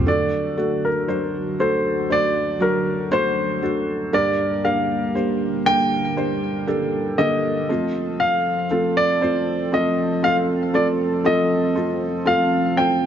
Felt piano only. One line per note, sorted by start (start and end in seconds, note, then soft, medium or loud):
0.06 1.55 D3 soft
0.06 0.54 A3 medium
0.06 0.55 D4 medium
0.06 0.55 F#4 medium
0.06 0.55 A4 medium
0.57 1.06 A3 medium
0.57 1.06 D4 medium
0.57 1.06 F#4 medium
0.57 1.06 A4 medium
1.08 1.56 F#3 medium
1.08 1.56 D4 soft
1.08 1.57 F#4 soft
1.08 1.57 C5 medium
1.59 2.07 A3 medium
1.59 2.08 D4 medium
1.59 2.08 F#4 soft
1.59 2.08 A4 medium
2.10 2.58 A3 medium
2.10 2.58 D4 medium
2.10 2.58 F#4 soft
2.10 2.58 C5 medium
2.60 3.09 F#3 medium
2.60 3.09 D4 medium
2.60 3.09 F#4 medium
3.11 3.60 A3 medium
3.11 3.60 D4 medium
3.11 3.60 F#4 medium
3.11 3.60 C5 medium
3.62 4.10 A3 medium
3.62 4.11 D4 medium
3.62 4.11 F#4 medium
3.62 4.11 A4 medium
4.12 5.62 G2 soft
4.12 4.61 A#3 medium
4.12 4.61 D4 medium
4.12 4.62 G4 medium
4.12 4.62 A#4 medium
4.64 5.12 A#3 medium
4.64 5.13 D4 medium
4.64 5.13 G4 medium
4.64 5.13 A#4 medium
5.15 5.63 A#3 medium
5.15 5.63 D4 soft
5.15 5.63 G4 medium
5.15 5.64 C5 medium
5.65 6.14 A#3 medium
5.65 6.14 D4 medium
5.65 6.14 G4 soft
5.65 6.14 A#4 medium
6.16 6.65 A#3 medium
6.16 6.65 D4 medium
6.16 6.65 G4 soft
6.16 6.65 C5 medium
6.67 7.16 A#3 medium
6.67 7.16 D4 medium
6.67 7.16 G4 medium
6.67 7.16 A4 medium
7.18 7.67 D3 medium
7.18 7.67 A#3 medium
7.18 7.67 G4 medium
7.18 7.67 A4 medium
7.69 8.66 A3 medium
7.69 8.66 C4 medium
7.69 8.66 F4 medium
7.69 8.66 A4 medium
8.71 9.19 A3 medium
8.71 9.19 C4 medium
8.71 9.19 F4 medium
8.71 9.19 A4 medium
9.21 9.70 A3 medium
9.21 9.70 C4 medium
9.21 9.70 F4 soft
9.21 9.70 C5 medium
9.72 10.21 A3 medium
9.72 10.21 C4 medium
9.72 10.21 F4 medium
9.72 10.21 A4 medium
10.23 10.71 A3 medium
10.23 10.71 C4 medium
10.23 10.72 F4 medium
10.23 10.72 A4 medium
10.73 11.22 A3 medium
10.73 11.22 C4 medium
10.73 11.22 F4 medium
10.73 11.23 A4 medium
11.24 11.73 A3 medium
11.24 11.73 C4 medium
11.24 11.73 F4 medium
11.24 11.74 A4 medium
11.75 12.24 A3 medium
11.75 12.24 C4 medium
11.75 12.24 F4 medium
11.75 12.24 A4 medium
12.25 12.74 A3 medium
12.25 12.74 C4 medium
12.25 12.75 F4 medium
12.25 12.75 A4 medium
12.77 13.06 A3 medium
12.77 13.06 C4 medium
12.77 13.06 F4 medium
12.77 13.06 C5 medium